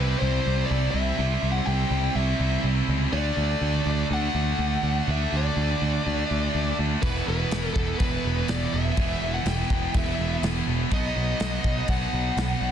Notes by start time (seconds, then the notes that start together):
Already playing: C2 C3 G3 C4 B4
0.01 C4 E4
0.08 C4 E4
0.16 C4 E4 C5
0.22 C2 C4 E4
0.32 C4 E4
0.40 C4 E4
0.46 C2 C4 E4
0.54 C4 E4
0.64 C4 E4 D5
0.71 C2 C4 E4
0.77 C4 E4
0.86 C4 E4
0.91 C2 C4 E4 E5
1.01 C4 E4
1.09 C4 E4
1.18 C2 C3 G3 C4 E4
1.26 C4 E4
1.34 C4 E4
1.42 C2 C4 E4
1.49 C4 E4 F#5
1.57 C4 E4
1.64 C2 C4 E4 G5
1.73 C4 E4
1.81 C4 E4
1.88 C2 C4 E4
1.96 C4 E4
2.04 C4 E4
2.11 C4 E4
2.15 C2 E4 E5
2.19 C4
2.27 C4 E4
2.35 C4 E4
2.40 C2 C4
2.44 E4
2.50 C4 E4
2.58 C4 E4
2.64 C2 C4 E4
2.75 C4 E4
2.82 C4 E4
2.88 C#2 C4 E4
2.98 C4 E4
3.05 C4 E4
3.12 D2 D3 A3 D4 D5
3.16 A3 D4
3.20 D4
3.28 A3 D4
3.36 D2 A3 D4
3.42 A3 D4
3.51 A3 D4
3.59 D2 A3 D4
3.66 A3 D4
3.74 A3 D4
3.82 A3 D4
3.86 D2
3.90 A3 D4
3.98 A3 D4
4.05 A3 D4
4.11 D2 A3 F#5
4.15 D4
4.21 A3 D4
4.28 A3 D4
4.35 D2 A3 D4
4.43 A3 D4
4.52 A3 D4
4.59 D2 A3 D4
4.67 A3 D4
4.76 A3 D4
4.83 D2 A3 D4
4.91 A3 D4
4.98 A3 D4
5.07 D2 D3 A3 D4 E5
5.15 A3 D4
5.23 A3 D4
5.30 D2 A3 D4
5.37 A3 D4 D5
5.47 A3 D4
5.55 D2 A3 D4
5.62 A3 D4
5.70 A3 D4
5.77 A3 D4
5.82 D2
5.86 A3 D4
5.93 A3 D4
6.01 A3 D4
6.06 D2 A3 D4
6.16 A3 D4
6.24 A3 D4
6.31 D2 A3 D4
6.40 A3 D4
6.48 A3 D4
6.55 D2 A3 D4
6.64 A3 D4
6.71 A3 D4
6.78 D2 A3 D4
6.86 A3 D4
6.94 A3 D4
7.02 E1 E2 B2 E3 B3 E4 B4, kick, crash
7.10 B3 E4
7.17 B3 E4
7.26 E1 B3 E4 B4
7.32 B3 E4
7.40 B3 E4
7.48 B3 E4, crash
7.52 E1 B3, snare
7.56 E4
7.63 B3 E4
7.72 E1 B3 E4 A4, kick
7.80 B3 E4
7.87 B3 E4
7.94 B3 E4
7.99 E1 E4 B4, kick, crash
8.03 B3
8.11 B3 E4
8.18 B3 E4
8.25 E1 B3 E4
8.33 B3 E4
8.41 B3 E4
8.48 E1 B3 E4 D5, snare, crash
8.57 B3 E4
8.64 B3 E4
8.72 E1 B3 E4 E5
8.80 B3 E4
8.87 B3 E4
8.96 E1 E2 B2 E3 B3 E4, kick, crash
9.05 B3 E4
9.13 B3 E4
9.20 E1 B3 E4
9.28 B3 E4
9.34 B3 E4 F#5
9.43 E1 B3 E4, snare, crash
9.48 B3 E4 G5
9.59 B3 E4
9.67 E1 B3 E4, kick
9.74 B3 E4
9.82 B3 E4
9.89 B3 E4
9.94 E1 B3 E5, kick, crash
9.99 E4
10.05 B3 E4
10.13 B3 E4
10.19 E1 B3 E4
10.28 B3 E4
10.35 B3 E4
10.43 E1 B3 E4, snare, crash
10.50 B3 E4
10.58 B3 E4
10.67 E1 B3 E4
10.74 B3 E4
10.82 B3 E4
10.91 B1 B2 F#3 B3 D#4 D#5, kick, crash
10.99 B3 D#4
11.06 B3 D#4
11.14 B1 B3 D#4
11.22 B3 D#4
11.29 B3 D#4
11.37 B1 B3 D#4, snare, crash
11.45 B3 D#4
11.52 B3 D#4
11.61 B1 B3 D#4, kick
11.68 B3 D#4
11.76 B3 D#4
11.83 B3 D#4
11.88 B1 B3 D#4 F#5, kick, crash
11.99 B3 D#4
12.06 B3 D#4
12.13 B1 B3 D#4
12.22 B3 D#4
12.30 B3 D#4
12.37 B1 B3 D#4, snare, crash
12.45 B3 D#4
12.53 B3 D#4
12.61 B1 B3 D#4
12.68 B3